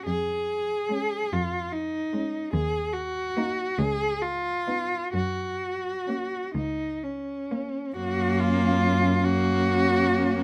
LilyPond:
<<
  \new Staff \with { instrumentName = "Cello" } { \time 6/8 \key fis \major \tempo 4. = 47 gis'4. eis'8 dis'4 | gis'8 fis'4 gis'8 eis'4 | fis'4. dis'8 cis'4 | fis'8 eis'4 fis'4. | }
  \new Staff \with { instrumentName = "Cello" } { \time 6/8 \key fis \major r4 cis'8 r4 cis'8 | r4 dis'8 r4 dis'8 | r4 cis'8 r4 cis'8 | cis'4. cis'4. | }
  \new Staff \with { instrumentName = "Cello" } { \time 6/8 \key fis \major r4 gis8 r4 gis8 | r4 ais8 r4 b8 | r4 ais8 r4 ais8 | ais4. ais4. | }
  \new Staff \with { instrumentName = "Cello" } { \clef bass \time 6/8 \key fis \major eis,4. eis,4. | dis,4. cis,4. | fis,4. cis,4. | fis,2. | }
>>